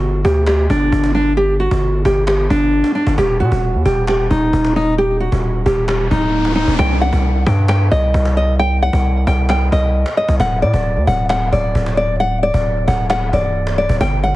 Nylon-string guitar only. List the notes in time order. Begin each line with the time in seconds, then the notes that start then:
Already playing: F#4
0.25 G4
0.47 G4
0.70 D4
1.15 D4
1.37 G4
1.60 F#4
2.05 G4
2.28 G4
2.50 D4
2.95 D4
3.18 G4
3.40 F#4
3.85 G4
4.09 G4
4.30 D#4
4.76 D#4
4.98 G4
5.20 F#4
5.66 G4
5.88 G4
6.11 D#4
6.55 D#4
6.79 G5
7.01 F#5
7.47 G5
7.69 G5
7.91 D#5
8.37 D#5
8.59 G5
8.82 F#5
9.27 G5
9.50 G5
9.73 D#5
10.17 D#5
10.40 F#5
10.62 D5
11.07 F#5
11.30 F#5
11.52 D5
11.97 D5
12.20 F#5
12.43 D5
12.88 F#5
13.10 F#5
13.33 D5
13.78 D5
14.01 G5
14.23 F#5